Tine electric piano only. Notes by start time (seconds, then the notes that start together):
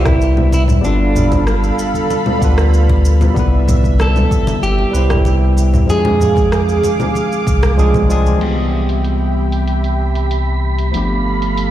Already playing: G3 B3 C4 E4 B4 C5
0.81 G3 B3 D4
0.85 F4 A4
2.39 G3 B3 D4
2.43 F4 B4
3.34 G3 B3 C4
3.38 E4 B4
4.92 G3 C4 B4
4.96 E4 C5
5.86 F3 G#3 C4
5.90 D4 G#4
7.77 F3 G#3 C4 D4 G#4
8.09 F3 G#3 C4 D4 G#4
8.38 E3 G3 B3
8.42 C4 G4
10.91 F3 A3 B3
10.96 D4 G4